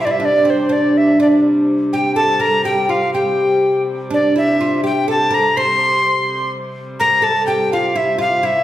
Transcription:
Already playing: hurdy-gurdy C3 G3
0.01 recorder E5
0.05 oud E4, recorder D5
0.11 recorder E5
0.20 oud D4
0.25 recorder D5
0.45 oud C4
0.50 recorder C5
0.69 oud D4, recorder D5
0.97 recorder E5
1.19 hurdy-gurdy C3 G3, oud D4, recorder D5
1.93 oud G4, recorder G5
2.16 oud A4, recorder A5
2.40 oud A#4, recorder A#5
2.65 oud G4, recorder G5
2.89 oud F4, recorder F5
3.14 oud G4, recorder G5
4.10 oud D4, recorder D5
4.36 oud E4, recorder E5
4.61 oud F4
4.84 oud G4, recorder G5
5.08 oud A4, recorder A5
5.31 oud A#4, recorder A#5
5.57 oud C5, recorder C6
7.00 hurdy-gurdy C3 G3, oud A#4, recorder A#5
7.22 oud A4, recorder A5
7.47 oud G4, recorder G5
7.72 oud F4, recorder F5
7.95 oud E4, recorder E5
8.18 oud F4, recorder F5
8.43 oud E4, recorder E5

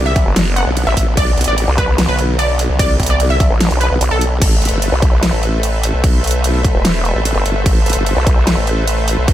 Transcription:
Already playing: wobble bass C2, supersaw synth D3 F#3 B3
0.06 synth pluck E5
0.16 kick, closed hi-hat
0.26 wobble bass F#1
0.36 snare, closed hi-hat, crash
0.56 synth pluck F#5, closed hi-hat
0.67 wobble bass B1
0.77 closed hi-hat, crash
0.87 wobble bass A1, synth pluck E5
0.97 wobble bass A1, kick, open hi-hat
1.17 wobble bass B1, synth pluck D5, kick, closed hi-hat, crash
1.37 wobble bass B1, closed hi-hat
1.41 closed hi-hat
1.44 wobble bass A1, synth pluck D5, closed hi-hat
1.58 closed hi-hat, crash
1.68 wobble bass C2
1.78 synth pluck B4, kick, closed hi-hat
1.98 snare, closed hi-hat, crash
2.08 wobble bass B1, synth pluck B4
2.19 closed hi-hat
2.39 synth pluck D5, closed hi-hat, crash
2.59 open hi-hat
2.69 wobble bass C2
2.79 synth pluck D5, kick, closed hi-hat, crash
3.00 kick, closed hi-hat
3.03 closed hi-hat
3.06 synth pluck D5, closed hi-hat
3.20 closed hi-hat, crash
3.30 synth pluck E5
3.40 kick, open hi-hat
3.50 wobble bass A1
3.61 snare, closed hi-hat, crash
3.71 wobble bass B1, closed hi-hat
3.81 synth pluck B4, closed hi-hat
3.91 wobble bass B1
4.01 wobble bass B1, closed hi-hat, crash
4.11 wobble bass B1, synth pluck A4
4.21 open hi-hat
4.41 wobble bass A1, supersaw synth A3 A4 B4 C5 E5, kick, closed hi-hat, crash
4.62 wobble bass A1, closed hi-hat
4.65 closed hi-hat
4.69 wobble bass G1, closed hi-hat
4.82 closed hi-hat, crash
4.92 wobble bass B1
5.02 kick, closed hi-hat
5.23 snare, closed hi-hat, crash
5.33 wobble bass A1
5.43 closed hi-hat
5.63 closed hi-hat, crash
5.83 open hi-hat
5.94 wobble bass B1
6.04 kick, closed hi-hat, crash
6.24 closed hi-hat
6.27 closed hi-hat
6.31 closed hi-hat
6.44 closed hi-hat, crash
6.65 kick, closed hi-hat
6.75 wobble bass E1
6.85 snare, closed hi-hat, crash
7.05 closed hi-hat
7.15 wobble bass A1
7.25 closed hi-hat, crash
7.36 wobble bass G1
7.46 wobble bass G1, open hi-hat
7.66 wobble bass A1, kick, closed hi-hat, crash
7.86 wobble bass A1, closed hi-hat
7.90 closed hi-hat
7.93 wobble bass G1, closed hi-hat
8.06 closed hi-hat, crash
8.17 wobble bass B1
8.27 kick, closed hi-hat
8.47 snare, closed hi-hat, crash
8.57 wobble bass A1
8.67 closed hi-hat
8.87 closed hi-hat, crash
9.08 open hi-hat
9.18 wobble bass B1
9.28 kick, closed hi-hat, crash

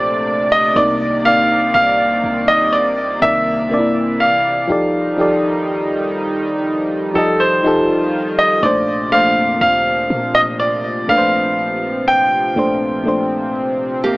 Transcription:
Already playing: 808-style bass A#1, fm electric piano A#2 A3 D4 C5, analog synth pad A#2 C3 A3 D5, grand piano D5
0.52 grand piano D#5
0.74 808-style bass C2, fm electric piano C3 A#3 D#4, analog synth pad D#3 A#3, grand piano D5
0.78 fm electric piano D5
1.23 fm electric piano C3 A#3 D#4, grand piano F5
1.28 fm electric piano D5
1.74 808-style bass C2, grand piano F5
2.24 808-style bass C2
2.48 grand piano D#5
2.73 grand piano D5
3.20 808-style bass C2, fm electric piano C3 D#3 A#3, grand piano E5
3.25 fm electric piano D5
3.69 fm electric piano C3 A#3 D4, analog synth pad E3
3.74 fm electric piano D5
3.79 fm electric piano E4
4.20 grand piano F5
4.68 808-style bass F1, analog synth pad D#3 F3 G3 D#4, fm electric piano F3 D#4 G4 A4
4.72 fm electric piano D5
5.17 fm electric piano F3 D#4 G4 A4
5.21 fm electric piano D5
5.92 808-style bass C2
7.14 808-style bass F1, fm electric piano F3 D#4 G4 A4, grand piano A4
7.18 fm electric piano D#5
7.40 grand piano C5
7.63 analog synth pad D#3 F4, fm electric piano F3 D#4 G4
7.67 fm electric piano A4
8.39 grand piano D#5
8.61 808-style bass A#1, fm electric piano A#2 A3 D4, analog synth pad A#2 C3, grand piano D5
8.66 fm electric piano C5
9.10 fm electric piano A#2 A3 D4, grand piano F5
9.15 fm electric piano C5
9.37 808-style bass F2
9.61 808-style bass D2, grand piano F5
10.10 808-style bass A#2
10.35 grand piano D#5
10.60 grand piano D5
11.07 808-style bass A#1, fm electric piano A#2 A3 D4, grand piano F5
11.11 fm electric piano B4
11.18 fm electric piano C5
12.08 grand piano G5
12.55 808-style bass A#1, fm electric piano A#2 A3 D4, analog synth pad C4
12.59 fm electric piano C5
13.04 fm electric piano A#2 A3 D4
13.08 fm electric piano C5
14.04 nylon-string guitar A#3 G4

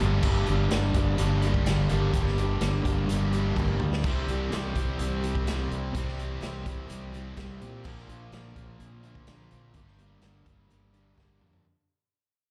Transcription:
0.00 fingered electric bass G1, steel-string acoustic guitar G2 D3 G3 A#3 D4 G4, closed hi-hat
0.23 fingered electric bass G1, overdriven electric guitar G2, kick, crash
0.46 fingered electric bass G1, steel-string acoustic guitar G3 A#3 D4 G4, closed hi-hat
0.70 fingered electric bass G1, steel-string acoustic guitar G2 D3 G3 A#3 D4 G4, snare, closed hi-hat
0.94 fingered electric bass G1, steel-string acoustic guitar G3 A#3 D4 G4, kick, closed hi-hat
1.17 fingered electric bass G1, distorted electric guitar G2 D3, steel-string acoustic guitar G3 A#3 D4 G4, closed hi-hat
1.42 distorted electric guitar G2 D3, overdriven electric guitar D3, steel-string acoustic guitar G3 A#3 D4 G4, closed hi-hat
1.54 kick
1.66 fingered electric bass G1, steel-string acoustic guitar G2 D3 G3 A#3 D4 G4, snare, closed hi-hat
1.88 fingered electric bass G1, distorted electric guitar G2 D3 G3 A#3 D4 G4, overdriven electric guitar A#3, closed hi-hat
2.13 fingered electric bass G1, steel-string acoustic guitar G2 D3 G3 A#3 D4 G4, kick, closed hi-hat
2.27 snare
2.37 overdriven electric guitar G3, steel-string acoustic guitar A#3 D4 G4, closed hi-hat
2.41 steel-string acoustic guitar G3
2.61 fingered electric bass G1, steel-string acoustic guitar G2 D3 G3 A#3 D4 G4, snare, closed hi-hat
2.85 fingered electric bass G1, steel-string acoustic guitar G3 A#3 D4 G4, kick, closed hi-hat
3.07 fingered electric bass G1, distorted electric guitar G2 D3, steel-string acoustic guitar G3 A#3, closed hi-hat
3.12 steel-string acoustic guitar D4 G4
3.32 distorted electric guitar G2 D3, overdriven electric guitar D3, steel-string acoustic guitar G3 A#3 D4 G4, closed hi-hat
3.56 fingered electric bass G1, steel-string acoustic guitar G2 D3 G3 A#3 D4 G4, kick, high tom
3.68 mid tom
3.80 fingered electric bass D2, overdriven electric guitar A#3, mid tom
3.93 snare
4.04 fingered electric bass C2, steel-string acoustic guitar C3 G3 C4 E4 G4, distorted electric guitar E3, kick, crash
4.28 fingered electric bass C2, overdriven electric guitar G3, steel-string acoustic guitar C4 E4 G4, closed hi-hat
4.52 fingered electric bass C2, steel-string acoustic guitar C3 G3 C4 E4 G4, snare, closed hi-hat
4.76 fingered electric bass C2, steel-string acoustic guitar C4 E4 G4, kick, closed hi-hat
4.98 fingered electric bass C2, steel-string acoustic guitar G3 C4 E4 G4, closed hi-hat
5.21 overdriven electric guitar C3, distorted electric guitar C3 E3 G3, steel-string acoustic guitar C4 E4 G4, closed hi-hat
5.35 kick
5.46 fingered electric bass C2, steel-string acoustic guitar C3 G3 C4 E4 G4, distorted electric guitar E3, snare, closed hi-hat
5.70 fingered electric bass C2, overdriven electric guitar C4, closed hi-hat
5.94 fingered electric bass C2, steel-string acoustic guitar C3 G3 C4 E4 G4, distorted electric guitar E3, kick, closed hi-hat
6.08 snare
6.17 overdriven electric guitar G3, steel-string acoustic guitar C4 E4 G4, closed hi-hat
6.41 fingered electric bass C2, steel-string acoustic guitar C3 G3 C4 E4 G4, snare, closed hi-hat
6.65 fingered electric bass C2, steel-string acoustic guitar C4 E4 G4, kick, closed hi-hat
6.88 fingered electric bass C2, steel-string acoustic guitar G3 C4 E4 G4, closed hi-hat
7.13 overdriven electric guitar C3, distorted electric guitar C3 E3 G3, steel-string acoustic guitar C4 E4 G4, closed hi-hat
7.36 fingered electric bass C2, steel-string acoustic guitar C3 G3 C4 E4 G4, distorted electric guitar E3, kick, snare, closed hi-hat
7.61 fingered electric bass A#2, overdriven electric guitar C4, closed hi-hat
7.84 fingered electric bass A#1, steel-string acoustic guitar A#2 D3 F3 C4 D4 A#4, distorted electric guitar A#3 F4, kick, crash
7.98 snare
8.07 fingered electric bass A#1, steel-string acoustic guitar F3 C4 D4 A#4, closed hi-hat
8.32 fingered electric bass A#1, steel-string acoustic guitar A#2 D3 F3 C4 D4 A#4, snare, closed hi-hat
8.55 fingered electric bass A#1, steel-string acoustic guitar F3 C4 D4 A#4, kick, closed hi-hat
8.80 fingered electric bass A#1, steel-string acoustic guitar F3 C4 D4 A#4, closed hi-hat
9.03 distorted electric guitar A#2 A#3 F4, overdriven electric guitar D3, steel-string acoustic guitar F3 C4 D4 A#4, closed hi-hat
9.15 kick
9.27 fingered electric bass A#1, steel-string acoustic guitar A#2 D3 F3 C4 D4 A#4, distorted electric guitar A#3 F4, snare, closed hi-hat
9.51 fingered electric bass A#1, overdriven electric guitar C4, closed hi-hat
9.74 fingered electric bass G1, steel-string acoustic guitar G2 D3 G3 A#3 D4 A#4, distorted electric guitar G4, kick, closed hi-hat
9.87 snare
9.98 steel-string acoustic guitar G3 A#3 D4 A#4, closed hi-hat
10.21 fingered electric bass G1, steel-string acoustic guitar G2 D3 G3 A#3 D4 A#4, snare, closed hi-hat
10.46 fingered electric bass G1, steel-string acoustic guitar G3 A#3 D4 A#4, kick, closed hi-hat
10.70 fingered electric bass G1, steel-string acoustic guitar G3 A#3 D4 A#4, closed hi-hat
10.93 distorted electric guitar G2 D3 G4, overdriven electric guitar D3, steel-string acoustic guitar G3 A#3 D4 A#4, closed hi-hat
11.17 fingered electric bass G1, steel-string acoustic guitar G2 D3 G3 A#3 D4 A#4, distorted electric guitar G4, kick, snare
11.41 fingered electric bass F2, overdriven electric guitar A#3, mid tom
11.53 floor tom

